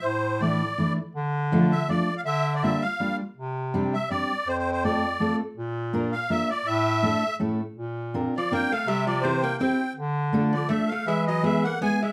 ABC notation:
X:1
M:3/4
L:1/16
Q:"Swing" 1/4=163
K:Dm
V:1 name="Accordion"
c4 d6 z2 | z6 e2 d3 f | e3 d e2 f4 z2 | z6 e2 d4 |
(3c2 c2 c2 d6 z2 | z6 f2 e2 d2 | e8 z4 | z6 d2 g2 f2 |
e2 d2 c2 g2 g4 | z6 d2 e2 f2 | e2 _e2 =e2 ^f2 ^g2 e2 |]
V:2 name="Steel-string acoustic guitar"
z4 [E,A,DE]2 z2 [E,A,DE]2 z2 | z4 [F,A,DF]2 z2 [F,A,DF]2 z2 | z4 [G,B,DF]2 z2 [G,B,DF]2 z2 | z4 [G,CDG]2 z2 [G,CDG]2 z2 |
z4 [A,CFA]2 z2 [A,CFA]2 z2 | z4 [B,DFB]2 z2 [B,DFB]2 z2 | z4 [A,DEA]2 z2 [A,^CEA]2 z2 | z4 [CDFB]2 z2 [CDFB]2 z2 |
z4 [CEGc]2 z2 [CEGc]2 z2 | z4 [A,DFA]2 z2 [A,DFA]2 z2 | z4 [^G,=B,E^G]2 z2 [G,B,EG]2 z2 |]
V:3 name="Hollow-body jazz guitar" clef=bass
z12 | z12 | z12 | z12 |
z12 | z12 | z12 | z6 F,2 B,2 A,2 |
G,2 F,2 E,2 B,2 C4 | z6 F,2 A,2 A,2 | ^G,2 ^F,2 G,2 B,2 =B,2 G,2 |]
V:4 name="Bass clarinet" clef=bass
A,,12 | D,12 | D,8- D,2 z2 | C,12 |
F,,12 | B,,12 | A,,8 A,,4 | B,,8- B,,2 z2 |
C,12 | D,12 | E,12 |]